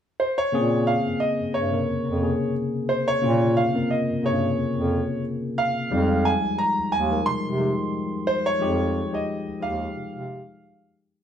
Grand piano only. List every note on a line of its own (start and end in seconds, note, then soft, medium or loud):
0.20 0.39 C5 medium
0.38 0.89 C#5 medium
0.87 1.19 F5 medium
1.20 1.55 D#5 medium
1.54 2.51 C#5 medium
2.89 3.08 C5 medium
3.08 3.58 C#5 loud
3.57 3.91 F5 medium
3.91 4.25 D#5 medium
4.26 5.22 C#5 medium
5.58 6.27 F5 medium
6.25 6.60 G#5 medium
6.58 6.94 A#5 medium
6.92 7.24 G#5 medium
7.26 8.30 C6 loud
8.27 8.44 C5 medium
8.46 9.15 C#5 loud
9.14 9.64 D#5 medium
9.62 10.93 F5 medium